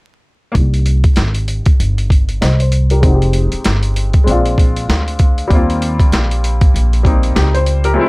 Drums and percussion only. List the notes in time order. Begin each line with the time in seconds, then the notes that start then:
0.55 kick, closed hi-hat
0.74 closed hi-hat
0.86 closed hi-hat
1.04 kick, closed hi-hat
1.16 snare, closed hi-hat
1.35 closed hi-hat
1.48 closed hi-hat
1.66 kick, closed hi-hat
1.80 closed hi-hat
1.98 closed hi-hat
2.10 kick, closed hi-hat
2.29 closed hi-hat
2.42 snare, closed hi-hat
2.60 closed hi-hat
2.72 closed hi-hat
2.90 closed hi-hat
3.03 kick, closed hi-hat
3.22 closed hi-hat
3.33 closed hi-hat
3.52 closed hi-hat
3.64 snare, closed hi-hat
3.83 closed hi-hat
3.96 closed hi-hat
4.13 kick, closed hi-hat
4.27 closed hi-hat
4.45 closed hi-hat
4.58 kick, closed hi-hat
4.76 closed hi-hat
4.90 snare, closed hi-hat
5.08 closed hi-hat
5.19 kick, closed hi-hat
5.38 closed hi-hat
5.50 kick, closed hi-hat
5.70 closed hi-hat
5.82 closed hi-hat
6.00 kick, closed hi-hat
6.12 snare, closed hi-hat
6.31 closed hi-hat
6.44 closed hi-hat
6.61 kick, closed hi-hat
6.76 closed hi-hat
6.93 closed hi-hat
7.05 kick, closed hi-hat
7.23 closed hi-hat
7.36 snare, closed hi-hat
7.55 closed hi-hat
7.66 closed hi-hat
7.84 closed hi-hat